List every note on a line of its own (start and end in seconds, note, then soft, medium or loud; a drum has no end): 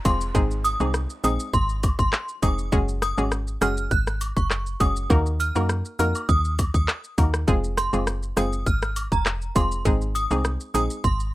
0.00 downlifter medium
0.05 0.32 F1 medium
0.05 0.32 G#3 medium
0.05 0.33 C4 medium
0.05 0.33 F4 medium
0.05 0.33 G#4 medium
0.05 0.19 C6 medium
0.05 kick loud
0.05 closed hi-hat medium
0.05 cabasa medium
0.05 high woodblock medium
0.05 shaker medium
0.21 shaker medium
0.34 0.76 G#1 loud
0.34 0.76 G#3 loud
0.34 0.76 C4 loud
0.34 0.77 D#4 medium
0.34 0.77 G#4 loud
0.34 kick loud
0.34 shaker medium
0.51 shaker medium
0.64 0.78 D#6 medium
0.64 closed hi-hat medium
0.64 cabasa medium
0.64 shaker medium
0.80 1.07 C2 loud
0.80 0.97 G#3 medium
0.80 0.97 C4 medium
0.80 0.97 D#4 medium
0.80 0.97 G#4 medium
0.80 high woodblock medium
0.80 shaker medium
0.94 cross-stick loud
0.94 shaker medium
1.10 shaker medium
1.24 1.38 A#1 loud
1.24 1.42 G#3 medium
1.24 1.42 C4 medium
1.24 1.42 D#4 medium
1.24 1.42 G#4 medium
1.24 1.37 D#6 medium
1.24 closed hi-hat medium
1.24 cabasa medium
1.24 shaker medium
1.40 shaker medium
1.54 1.95 G#1 loud
1.54 1.67 C6 medium
1.54 kick loud
1.54 shaker medium
1.69 shaker medium
1.83 kick loud
1.83 closed hi-hat medium
1.83 cabasa medium
1.83 high woodblock medium
1.83 shaker medium
1.99 2.12 G#1 medium
1.99 2.11 C6 medium
1.99 kick medium
1.99 shaker medium
2.13 cross-stick medium
2.13 clap medium
2.13 shaker medium
2.29 shaker soft
2.42 2.70 F1 medium
2.42 2.70 G#3 medium
2.42 2.70 C4 medium
2.42 2.70 D#4 medium
2.42 2.70 G#4 medium
2.42 2.56 D#6 medium
2.42 kick loud
2.42 closed hi-hat medium
2.42 cabasa medium
2.42 high woodblock medium
2.42 shaker medium
2.59 shaker medium
2.72 3.14 F#1 loud
2.72 3.14 G#3 loud
2.72 3.14 C#4 medium
2.72 3.14 F#4 medium
2.72 3.14 G#4 loud
2.72 kick loud
2.72 shaker medium
2.88 shaker medium
3.02 3.15 D#6 medium
3.02 cross-stick loud
3.02 closed hi-hat medium
3.02 cabasa medium
3.02 shaker medium
3.18 3.58 G#1 loud
3.18 3.34 G#3 medium
3.18 3.34 C#4 medium
3.18 3.34 F#4 medium
3.18 3.34 G#4 medium
3.18 high woodblock medium
3.18 shaker medium
3.32 cross-stick loud
3.32 shaker medium
3.47 shaker medium
3.61 3.88 F#1 medium
3.61 3.79 G#3 medium
3.61 3.79 C#4 medium
3.61 3.80 F#4 medium
3.61 3.80 G#4 medium
3.61 3.75 F6 medium
3.61 cross-stick medium
3.61 closed hi-hat medium
3.61 cabasa medium
3.61 shaker medium
3.77 shaker medium
3.91 4.33 G#1 loud
3.91 4.05 F#6 medium
3.91 kick loud
3.91 shaker medium
4.07 cross-stick medium
4.07 shaker medium
4.21 closed hi-hat medium
4.21 cabasa medium
4.21 high woodblock medium
4.21 shaker medium
4.37 4.76 F#1 medium
4.37 4.48 C#6 medium
4.37 kick medium
4.37 shaker medium
4.50 cross-stick medium
4.50 clap medium
4.50 shaker medium
4.66 shaker soft
4.80 5.07 F#1 medium
4.80 5.08 G#3 medium
4.80 5.08 C#4 medium
4.80 5.08 F#4 medium
4.80 5.08 G#4 medium
4.80 4.94 D#6 medium
4.80 kick loud
4.80 closed hi-hat medium
4.80 cabasa medium
4.80 high woodblock medium
4.80 shaker soft
4.96 shaker medium
5.10 5.52 D#2 loud
5.10 5.52 A#3 loud
5.10 5.52 D#4 medium
5.10 5.52 F#4 medium
5.10 5.52 A#4 loud
5.10 kick loud
5.10 high woodblock medium
5.10 shaker medium
5.26 shaker medium
5.40 5.53 F6 medium
5.40 closed hi-hat medium
5.40 cabasa medium
5.40 shaker medium
5.55 5.83 F#2 medium
5.55 5.72 A#3 medium
5.55 5.72 D#4 medium
5.55 5.72 F#4 medium
5.55 5.72 A#4 medium
5.55 high woodblock medium
5.55 shaker medium
5.69 cross-stick loud
5.69 shaker medium
5.85 shaker medium
5.99 6.14 F2 medium
5.99 6.17 A#3 medium
5.99 6.17 D#4 medium
5.99 6.17 F#4 medium
5.99 6.17 A#4 medium
5.99 6.13 F6 medium
5.99 closed hi-hat medium
5.99 cabasa medium
5.99 shaker medium
6.15 high woodblock medium
6.15 shaker medium
6.29 6.70 D#2 loud
6.29 6.42 D#6 medium
6.29 kick loud
6.29 shaker medium
6.45 shaker medium
6.59 kick loud
6.59 closed hi-hat medium
6.59 cabasa medium
6.59 high woodblock medium
6.59 shaker medium
6.74 6.87 D#2 medium
6.74 6.86 D#6 medium
6.74 kick medium
6.74 shaker medium
6.88 cross-stick medium
6.88 clap medium
6.88 shaker medium
7.04 shaker soft
7.18 7.45 D#2 loud
7.18 7.45 A#3 medium
7.18 7.46 D#4 medium
7.18 7.46 F#4 medium
7.18 7.46 A#4 medium
7.18 kick loud
7.18 closed hi-hat medium
7.18 cabasa medium
7.18 high woodblock medium
7.18 shaker medium
7.34 cross-stick loud
7.34 shaker medium
7.48 7.89 F1 loud
7.48 7.89 G#3 loud
7.48 7.89 C4 medium
7.48 7.90 F4 medium
7.48 7.90 G#4 loud
7.48 kick loud
7.48 shaker medium
7.64 shaker medium
7.77 7.91 C6 medium
7.77 cross-stick loud
7.77 closed hi-hat medium
7.77 cabasa medium
7.77 shaker medium
7.93 8.33 F#1 loud
7.93 8.09 G#3 medium
7.93 8.10 C4 medium
7.93 8.10 F4 medium
7.93 8.10 G#4 medium
7.93 high woodblock medium
7.93 shaker medium
8.07 cross-stick loud
8.07 shaker medium
8.23 shaker medium
8.37 8.64 F#1 loud
8.37 8.55 G#3 medium
8.37 8.55 C4 medium
8.37 8.55 F4 medium
8.37 8.55 G#4 medium
8.37 8.50 D#6 medium
8.37 cross-stick medium
8.37 closed hi-hat medium
8.37 cabasa medium
8.37 shaker medium
8.53 shaker medium
8.66 9.08 G#1 medium
8.66 8.80 F6 medium
8.66 kick loud
8.66 shaker medium
8.82 cross-stick loud
8.82 shaker medium
8.96 closed hi-hat medium
8.96 cabasa medium
8.96 high woodblock medium
8.96 shaker medium
9.12 9.52 F1 medium
9.12 9.24 A#5 medium
9.12 kick medium
9.12 shaker medium
9.26 cross-stick medium
9.26 clap medium
9.26 shaker medium
9.42 shaker soft
9.55 9.83 F1 medium
9.55 9.83 G#3 medium
9.55 9.83 C4 medium
9.55 9.83 F4 medium
9.55 9.83 G#4 medium
9.55 9.69 C6 medium
9.55 kick loud
9.55 closed hi-hat medium
9.55 cabasa medium
9.55 high woodblock medium
9.55 shaker medium
9.72 shaker medium
9.85 10.27 G#1 loud
9.85 10.27 G#3 loud
9.85 10.27 C4 medium
9.85 10.27 D#4 medium
9.85 10.27 G#4 loud
9.85 kick loud
9.85 shaker medium
10.01 shaker medium
10.15 10.28 D#6 medium
10.15 closed hi-hat medium
10.15 cabasa medium
10.15 shaker medium
10.31 10.58 C2 loud
10.31 10.47 G#3 medium
10.31 10.47 C4 medium
10.31 10.47 D#4 medium
10.31 10.47 G#4 medium
10.31 high woodblock medium
10.31 shaker medium
10.45 cross-stick loud
10.45 shaker medium
10.60 shaker medium
10.74 10.89 A#1 medium
10.74 10.92 G#3 medium
10.74 10.92 C4 medium
10.74 10.92 D#4 medium
10.74 10.93 G#4 medium
10.74 10.88 D#6 medium
10.74 closed hi-hat medium
10.74 cabasa medium
10.74 shaker medium
10.90 shaker medium
11.04 11.34 G#1 loud
11.04 11.17 C6 medium
11.04 kick loud
11.04 shaker medium
11.20 shaker medium